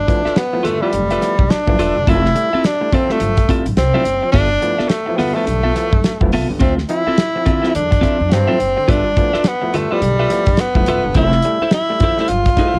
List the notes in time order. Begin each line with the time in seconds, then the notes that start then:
Already playing: D4
0.07 F3 A3 B3 E4, muted clean electric guitar stroke, kick, closed hi-hat
0.25 F4 A4 B4 E5, muted upright bass stroke, snare
0.36 B3, muted clean electric guitar stroke, snare, closed hi-hat
0.53 F3 A3 B3 E4, muted clean electric guitar stroke, muted conga
0.63 G2 D3 A3 F4 A4 B4 E5, snare, closed hi-hat, low conga
0.81 F3 G3 A3 B3 E4 F4 A4 B4 E5
0.93 F1 G2 D3, muted clean electric guitar stroke, closed hi-hat, high conga
1.10 F4 A4 B4 E5, closed hi-hat
1.21 F3 A3 B3 E4, muted clean electric guitar stroke, snare, closed hi-hat
1.39 E1, muted clean electric guitar stroke, kick, high conga
1.50 D4, snare, closed hi-hat
1.67 G1 F3 A3 B3 E4, muted clean electric guitar stroke, kick, muted conga, high conga
1.79 D#1 F4 A4 B4 E5, closed hi-hat
1.96 E1 G2 D3, muted clean electric guitar stroke
2.07 F1 F3 C4 E4 F4 A4 E5, kick, closed hi-hat, muted conga, low conga
2.25 muted clean electric guitar stroke, snare
2.35 G3 A3 E4, muted clean electric guitar stroke, closed hi-hat
2.53 A3 C4 E4 F4 A4 E5, muted upright bass stroke
2.64 D4, muted clean electric guitar stroke, snare, closed hi-hat, muted conga
2.81 G3 A3 E4, muted clean electric guitar stroke
2.92 F3 C4 F4 A4 E5, kick, closed hi-hat, low conga
3.09 G3 A3 C4 E4 F4 A4 E5, snare
3.20 G1 F3, muted clean electric guitar stroke, closed hi-hat, high conga
3.37 muted clean electric guitar stroke, kick, snare, closed hi-hat
3.49 G3 A3 C4 E4 F4 A4 E5, kick, closed hi-hat
3.66 A1, muted clean electric guitar stroke, closed hi-hat, high conga
3.77 C2 C4, muted clean electric guitar stroke, snare, closed hi-hat
3.94 G3 A3 C4 E4 F4 A4 E5, high conga
4.05 F#1, closed hi-hat
4.23 F3, muted clean electric guitar stroke
4.32 G1 G2 D3 B3 D4 F4 A4 E5, kick, closed hi-hat, muted conga, low conga
4.50 muted clean electric guitar stroke
4.62 F3 A3 B3 E4, muted clean electric guitar stroke, closed hi-hat
4.79 B3 F4 A4 E5, muted upright bass stroke, snare
4.89 A3, muted clean electric guitar stroke, snare, closed hi-hat, muted conga
5.06 F3 A3 B3 E4, muted clean electric guitar stroke, muted conga
5.17 G2 D3 B3 F4 A4 E5, snare, open hi-hat, low conga
5.34 F3 A3 B3 E4 F4 A4 E5
5.46 B1 G2 D3, muted clean electric guitar stroke, closed hi-hat, high conga
5.63 B3 F4 A4 E5
5.75 F3 A3 B3 E4, muted clean electric guitar stroke, snare, closed hi-hat
5.93 G1, muted clean electric guitar stroke, kick, high conga
6.04 snare, closed hi-hat
6.21 F1 F3 A3 B3 E4, muted clean electric guitar stroke, kick, muted conga, high conga
6.32 C2 B3 F4 A4 E5, open hi-hat
6.49 C#2 G2 D3, muted clean electric guitar stroke
6.60 D2 D3 C4 F4 A4 E5, kick, closed hi-hat, muted conga, low conga
6.78 muted clean electric guitar stroke, snare, muted conga
6.89 F3 C4 E4, muted clean electric guitar stroke, closed hi-hat
7.07 C4 E4 F4 A4 E5, muted upright bass stroke
7.18 muted clean electric guitar stroke, snare, closed hi-hat, muted conga
7.35 F3 C4 E4, muted clean electric guitar stroke
7.46 D3 C4 F4 A4 E5, kick, closed hi-hat, low conga
7.62 F3 C4 E4 F4 A4 E5, snare
7.73 E2 D3 D4, muted clean electric guitar stroke, closed hi-hat, muted conga, high conga
7.91 muted clean electric guitar stroke, kick, snare, closed hi-hat, muted conga
8.01 F3 C4 E4 F4 A4 E5, kick, closed hi-hat
8.19 F2 C4 E4, muted clean electric guitar stroke, high conga
8.29 G2 C4, muted clean electric guitar stroke, snare, closed hi-hat
8.48 F3 C4 E4 F4 A4 E5, muted conga, high conga
8.59 F#1, muted clean electric guitar stroke, closed hi-hat
8.77 D3, muted clean electric guitar stroke
8.88 G1 G2 D3 D4 F4 A4 B4 E5, kick, closed hi-hat, muted conga, low conga
9.05 muted clean electric guitar stroke
9.17 F3 A3 B3 E4, muted clean electric guitar stroke, kick, closed hi-hat
9.33 F4 A4 B4 E5, muted upright bass stroke, snare
9.44 B3, muted clean electric guitar stroke, snare, closed hi-hat, muted conga
9.62 F3 A3 B3 E4, muted clean electric guitar stroke
9.74 G2 D3 A3 F4 A4 B4 E5, snare, closed hi-hat, low conga
9.91 F3 G3 A3 B3 E4 F4 A4 B4 E5
10.02 B1 G2 D3, muted clean electric guitar stroke, closed hi-hat, muted conga, high conga
10.20 F4 A4 B4 E5, muted conga
10.30 F3 A3 B3 E4, muted clean electric guitar stroke, snare, closed hi-hat
10.46 G1 B3 E4, muted clean electric guitar stroke, kick, closed hi-hat, high conga
10.57 B3, snare, closed hi-hat, muted conga
10.75 F1 F3 A3 B3 E4, muted clean electric guitar stroke, kick, high conga
10.86 D#1 F4 A4 B4 E5, closed hi-hat
11.04 E1 G2 D3, muted clean electric guitar stroke
11.15 F1 F3 E4 A4 C5 E5, kick, closed hi-hat, muted conga, low conga
11.32 muted clean electric guitar stroke, snare
11.43 G3 A3 E4, muted clean electric guitar stroke, closed hi-hat
11.61 A3 E4 A4 C5 E5, muted upright bass stroke
11.71 E4, muted clean electric guitar stroke, snare, closed hi-hat, muted conga
11.89 G3 A3 E4, muted clean electric guitar stroke, muted conga
12.00 F3 E4 A4 C5, kick, closed hi-hat, low conga
12.04 E5
12.17 G3 A3 E4 A4 C5 E5, snare
12.28 G1 F3 F4, muted clean electric guitar stroke, closed hi-hat, muted conga, high conga
12.46 muted clean electric guitar stroke, kick, closed hi-hat, muted conga
12.57 G3 A3 E4 A4 C5 E5, kick, closed hi-hat
12.74 A1, muted clean electric guitar stroke, high conga